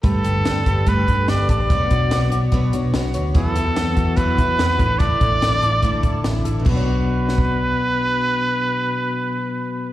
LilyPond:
<<
  \new Staff \with { instrumentName = "Trumpet" } { \time 4/4 \key b \minor \tempo 4 = 145 a'2 b'4 d''8 d''8~ | d''2~ d''8 r4. | a'2 b'2 | d''2.~ d''8 r8 |
b'1~ | b'1 | }
  \new Staff \with { instrumentName = "Clean electric guitar" } { \time 4/4 \key b \minor <g b'>8 g'8 d'8 g'8 a8 b'8 g'8 a'16 b'16 | b,8 fis'8 d'8 fis'8 b8 cis''8 fis'8 cis''8 | <e, e'>8 e'16 fis'16 b8 fis'8 fis8 e'8 fis'8 a,8 | <a, a'>8 d'16 e'16 d'8 d'16 e'16 d8 a'8 e'8 a'8 |
<b, fis b d' fis' cis''>1~ | <b, fis b d' fis' cis''>1 | }
  \new Staff \with { instrumentName = "Twelve-string acoustic guitar" } { \time 4/4 \key b \minor <g a d' g' b'>8 <d' g' b'>8 <a d' g' b'>8 <d' g' b'>8 <g a d' g' b'>8 <d' g' b'>8 <a d' g' b'>8 <d' g' b'>8 | <b, fis b d' fis' cis''>8 <b d' fis' cis''>8 <b d' fis' cis''>8 <b d' fis' cis''>8 <b, fis b d' fis' cis''>8 <b d' fis' cis''>8 <b d' fis' cis''>8 <b d' fis' cis''>8 | <e, e fis b e' fis'>8 <fis b e' fis'>8 <fis b e' fis'>8 <fis b e' fis'>8 <e, e fis b e' fis'>8 <fis b e' fis'>8 <fis b e' fis'>8 <d' e' a'>8 | <a, d d' e' a'>8 <d' e' a'>8 <d d' e' a'>8 <d' e' a'>8 <a, d d' e' a'>8 <d' e' a'>8 <d d' e' a'>8 <d' e' a'>8 |
<b, fis b d' fis' cis''>1~ | <b, fis b d' fis' cis''>1 | }
  \new Staff \with { instrumentName = "Picked electric bass" } { \clef bass \time 4/4 \key b \minor g,,8 g,,8 g,,8 g,,8 g,,8 g,8 g,,8 a,,8 | b,,8 b,,8 b,,8 b,,8 b,,8 b,8 b,,8 d,8 | e,8 e,8 e,8 e,8 e,8 e8 e,8 a,,8~ | a,,8 a,,8 a,,8 a,,8 a,,8 a,8 a,,8 a,,8 |
b,,1~ | b,,1 | }
  \new DrumStaff \with { instrumentName = "Drums" } \drummode { \time 4/4 <hh bd>8 hh8 <hh sn>8 <hh bd>8 <hh bd>8 <hh bd>8 <hh sn>8 <hh bd>8 | <hh bd>8 <hh bd>8 <hh sn>8 hh8 <hh bd>8 hh8 <hh sn>8 hh8 | <hh bd>8 hh8 <hh sn>8 <hh bd>8 <hh bd>8 <hh bd>8 <hh sn>8 <hh bd>8 | <hh bd>8 <hh bd>8 <hh sn>8 hh8 <hh bd>8 <hh bd>8 <hh sn>8 hh8 |
<cymc bd>4 r8 sn16 bd16 r4 r4 | r4 r4 r4 r4 | }
>>